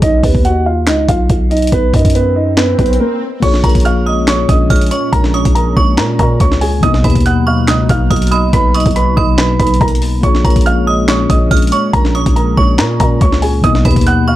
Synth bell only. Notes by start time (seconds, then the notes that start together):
3.64 C#6
4.07 D#6
4.70 F6
4.91 C#6
5.34 D#6
5.77 C#6
7.04 B5
7.47 C#6
8.11 D#6
8.32 B5
8.74 C#6
9.17 B5
10.45 C#6
10.87 D#6
11.51 F6
11.72 C#6
12.15 D#6
12.57 C#6
13.85 B5
14.28 C#6